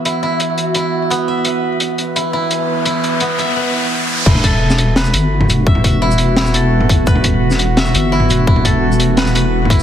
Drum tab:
CC |--------------------------------|--------------------------------|--------------------------------|x-------------------------------|
HH |x-------x---x---x-------x-------|x-------x---x---x-------x-------|x---x---x---x-------------------|----x-------x---x---x-------x---|
SH |--------------------------------|--------------------------------|--------------------------------|----------x-------x---------x---|
SD |--------------------------------|--------------------------------|--------------------------------|----------o-----o---------------|
T2 |--------------------------------|--------------------------------|--------------------------------|--o-----------------------o-----|
BD |--------------------------------|--------------------------------|--------------------------------|o---o---------------------------|

CC |--------------------------------|--------------------------------|--------------------------------|
HH |----x-------x---x---x-------x---|----x-------x---x---x-------x---|----x-------x---x---x-------x---|
SH |----------x-------x-------------|x---------x-------x---------x---|----------x-------x-----------x-|
SD |----------------o-o-------------|----------o-----o---------------|----------------o-o-------------|
T2 |--o-----------------------o-----|--o-----------------------o-----|--o------------------------o----|
BD |o---o-----------------------o---|o---o---------------------------|o---o-----------------------o---|